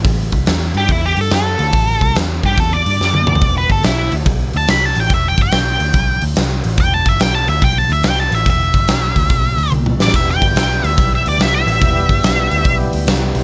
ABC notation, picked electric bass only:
X:1
M:4/4
L:1/8
Q:"Swing" 1/4=143
K:Em
V:1 name="Picked electric bass" clef=bass
A,,, C,, E,, G,, E,, G,, F,, D,, | A,,, C,, E,, G,, E,, G,, F,, D,, | E,,, G,,, B,,, D,, B,,, D,, C,, A,,, | E,,, G,,, B,,, D,, B,,, D,, C,, A,,, |
E,,, G,,, B,,, D,, B,,, D,, C,, A,,, | E,,, G,,, B,,, D,, B,,, D,, C,, A,,, | E,,, G,,, B,,, D,, B,,, D,, C,, A,,, | E,,, G,,, B,,, D,, B,,, D,, C,, B,,, |]